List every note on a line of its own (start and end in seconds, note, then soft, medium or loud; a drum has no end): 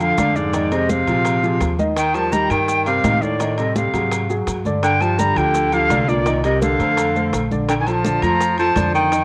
0.00 0.14 F2 medium
0.00 0.38 D3 medium
0.00 0.15 F3 medium
0.00 0.15 F4 medium
0.00 0.15 A4 medium
0.00 0.37 F5 medium
0.00 high conga soft
0.00 high timbale medium
0.00 maracas soft
0.18 1.02 F2 medium
0.18 0.48 D3 medium
0.18 0.48 D4 medium
0.18 0.48 D5 medium
0.18 high bongo medium
0.18 low bongo medium
0.18 high conga medium
0.18 high timbale medium
0.18 maracas medium
0.36 0.74 G#2 medium
0.36 0.74 D5 medium
0.36 maracas soft
0.53 0.69 D#3 medium
0.53 0.69 D#4 medium
0.53 0.69 D#5 medium
0.53 high bongo medium
0.53 high timbale medium
0.53 maracas medium
0.71 0.90 C3 medium
0.71 1.01 G#3 medium
0.71 1.01 G#4 medium
0.71 1.02 C5 medium
0.71 0.91 D#5 medium
0.71 high conga soft
0.71 high timbale medium
0.71 maracas soft
0.89 1.79 C3 medium
0.89 1.72 F5 medium
0.89 high bongo medium
0.89 high conga medium
0.89 maracas medium
1.07 1.57 A#1 medium
1.07 1.37 F3 medium
1.07 1.37 F4 medium
1.07 1.37 G#4 medium
1.07 high bongo soft
1.07 high conga soft
1.07 high timbale medium
1.07 maracas soft
1.25 high bongo medium
1.25 high conga soft
1.25 high timbale medium
1.25 maracas medium
1.43 1.73 F3 medium
1.43 1.73 F4 medium
1.43 1.73 G#4 medium
1.43 high bongo soft
1.43 high conga soft
1.43 maracas soft
1.60 2.45 D#2 medium
1.60 high bongo medium
1.60 low bongo medium
1.60 high conga soft
1.60 high timbale medium
1.60 maracas medium
1.79 2.08 D#3 medium
1.79 2.09 D#4 medium
1.79 2.09 D#5 medium
1.79 high bongo soft
1.79 high conga medium
1.79 maracas soft
1.96 2.17 D#3 medium
1.96 2.16 G5 medium
1.96 high bongo medium
1.96 high timbale medium
1.96 maracas medium
2.14 2.34 F3 medium
2.14 2.29 G3 medium
2.14 2.30 G4 medium
2.14 2.30 A#4 medium
2.14 2.34 A5 medium
2.14 high conga soft
2.14 high timbale medium
2.14 maracas soft
2.32 2.47 D#3 medium
2.32 2.52 G3 medium
2.32 2.47 D#4 medium
2.32 2.47 D#5 medium
2.32 2.52 A#5 medium
2.32 high bongo medium
2.32 high conga medium
2.32 maracas medium
2.50 3.00 G2 medium
2.50 2.86 D#3 medium
2.50 2.80 G3 medium
2.50 2.80 G4 medium
2.50 2.80 A#4 medium
2.50 2.85 G5 medium
2.50 high conga soft
2.50 high timbale medium
2.50 maracas soft
2.68 high bongo medium
2.68 high conga soft
2.68 maracas medium
2.86 3.24 C3 medium
2.86 3.01 G3 medium
2.86 3.01 G4 medium
2.86 3.02 A#4 medium
2.86 3.23 F5 medium
2.86 high conga soft
2.86 high timbale medium
2.86 maracas soft
3.04 3.88 A2 medium
3.04 3.34 D#3 medium
3.04 3.34 D#4 medium
3.04 3.34 D#5 medium
3.04 high bongo medium
3.04 low bongo medium
3.04 high conga medium
3.04 high timbale medium
3.04 maracas medium
3.22 3.60 A2 medium
3.22 3.59 D5 medium
3.22 high conga medium
3.22 maracas soft
3.40 3.55 D#3 medium
3.40 3.55 D#4 medium
3.40 3.55 D#5 medium
3.40 high bongo medium
3.40 high conga soft
3.40 high timbale medium
3.40 maracas medium
3.58 3.76 C3 medium
3.58 3.87 G3 medium
3.58 3.88 G4 medium
3.58 3.88 A4 medium
3.58 3.76 D#5 medium
3.58 high conga soft
3.58 high timbale medium
3.58 maracas soft
3.76 4.34 C3 medium
3.76 4.34 F5 medium
3.76 high bongo medium
3.76 high conga medium
3.76 maracas medium
3.93 4.43 G#2 medium
3.93 4.23 F#3 medium
3.93 4.23 F#4 medium
3.93 4.24 G#4 medium
3.93 high bongo soft
3.93 high conga soft
3.93 high timbale medium
3.93 maracas soft
4.11 high bongo medium
4.11 high conga soft
4.11 high timbale medium
4.11 maracas medium
4.29 4.59 F#3 medium
4.29 4.59 F#4 medium
4.29 4.59 G#4 medium
4.29 high bongo soft
4.29 high conga soft
4.29 maracas soft
4.47 5.31 G2 medium
4.47 high bongo medium
4.47 low bongo medium
4.47 high conga soft
4.47 high timbale medium
4.47 maracas medium
4.65 4.95 D3 medium
4.65 4.95 D4 medium
4.65 4.95 D5 medium
4.65 high bongo soft
4.65 high conga medium
4.65 maracas soft
4.83 5.03 D3 medium
4.83 5.03 G5 medium
4.83 high bongo medium
4.83 high conga soft
4.83 high timbale medium
4.83 maracas medium
5.01 5.16 F3 medium
5.01 5.20 F3 medium
5.01 5.16 F4 medium
5.01 5.16 G4 medium
5.01 5.21 A5 medium
5.01 high conga soft
5.01 high timbale medium
5.01 maracas soft
5.19 5.34 D3 medium
5.19 5.38 G3 medium
5.19 5.34 D4 medium
5.19 5.34 D5 medium
5.19 5.39 A#5 medium
5.19 high bongo medium
5.19 high conga medium
5.19 maracas medium
5.36 5.86 D2 medium
5.36 5.73 D3 medium
5.36 5.66 F3 medium
5.36 5.66 F4 medium
5.36 5.67 G4 medium
5.36 5.75 G5 medium
5.36 high conga soft
5.36 high timbale medium
5.36 maracas soft
5.55 high bongo medium
5.55 high conga soft
5.55 maracas medium
5.72 6.10 D3 medium
5.72 5.87 F3 medium
5.72 5.88 F4 medium
5.72 5.88 G4 medium
5.72 6.10 F5 loud
5.72 high conga soft
5.72 high timbale medium
5.72 maracas soft
5.90 6.74 C2 medium
5.90 6.20 D3 medium
5.90 6.20 D4 medium
5.90 6.20 D5 medium
5.90 high bongo medium
5.90 low bongo medium
5.90 high conga medium
5.90 high timbale medium
5.90 low timbale medium
5.90 maracas medium
6.08 6.43 A#2 medium
6.08 6.44 D5 medium
6.08 maracas soft
6.26 6.41 D#3 medium
6.26 6.41 D#4 medium
6.26 6.41 D#5 medium
6.26 high bongo medium
6.26 high conga soft
6.26 high timbale medium
6.26 maracas medium
6.44 6.61 C3 medium
6.44 6.74 G3 medium
6.44 6.74 G4 medium
6.44 6.74 A#4 medium
6.44 6.61 D#5 medium
6.44 high conga soft
6.44 high timbale medium
6.44 maracas soft
6.62 7.47 D3 medium
6.62 7.47 F5 medium
6.62 high bongo medium
6.62 high conga medium
6.62 maracas medium
6.79 7.29 F2 medium
6.79 7.09 A3 medium
6.79 7.09 A4 medium
6.79 7.10 C5 medium
6.79 high bongo soft
6.79 high conga soft
6.79 high timbale medium
6.79 maracas soft
6.97 high bongo medium
6.97 high conga soft
6.97 high timbale medium
6.97 maracas medium
7.15 7.45 A3 medium
7.15 7.45 A4 medium
7.15 7.45 C5 medium
7.15 high bongo soft
7.15 high conga soft
7.15 maracas soft
7.32 8.16 A#1 medium
7.32 high bongo medium
7.32 low bongo medium
7.32 high conga soft
7.32 high timbale medium
7.32 maracas medium
7.51 7.81 D3 medium
7.51 7.81 D4 medium
7.51 7.81 D5 medium
7.51 high bongo soft
7.51 high conga medium
7.51 maracas soft
7.69 7.74 D3 medium
7.69 7.74 G5 medium
7.69 high bongo medium
7.69 high conga soft
7.69 high timbale medium
7.69 maracas medium
7.80 7.89 D#3 medium
7.80 7.89 G#5 medium
7.87 8.02 F3 medium
7.87 8.23 F3 medium
7.87 8.02 F4 medium
7.87 8.02 A4 medium
7.87 8.24 A5 medium
7.87 high conga soft
7.87 high timbale medium
7.87 maracas soft
8.05 8.20 D3 medium
8.05 8.20 D4 medium
8.05 8.20 D5 medium
8.05 high bongo medium
8.05 high conga medium
8.05 maracas medium
8.22 8.72 F2 medium
8.22 8.52 F3 medium
8.22 8.58 F3 medium
8.22 8.52 A3 medium
8.22 8.52 F4 medium
8.22 8.58 A#5 medium
8.22 high conga soft
8.22 high timbale medium
8.22 maracas soft
8.40 high bongo medium
8.40 high conga soft
8.40 maracas medium
8.58 8.73 F3 medium
8.58 8.92 F3 medium
8.58 8.74 F4 medium
8.58 8.74 A4 medium
8.58 8.92 A5 medium
8.58 high conga soft
8.58 high timbale medium
8.58 maracas soft
8.76 9.24 F2 medium
8.76 9.06 D3 medium
8.76 9.06 D4 medium
8.76 9.06 D5 medium
8.76 high bongo medium
8.76 low bongo medium
8.76 high conga medium
8.76 high timbale medium
8.76 maracas medium
8.94 9.24 D#3 medium
8.94 9.24 G5 medium
8.94 maracas soft
9.12 9.24 D#3 medium
9.12 9.24 D#4 medium
9.12 9.24 D#5 medium
9.12 high bongo medium
9.12 high conga soft
9.12 high timbale medium
9.12 maracas medium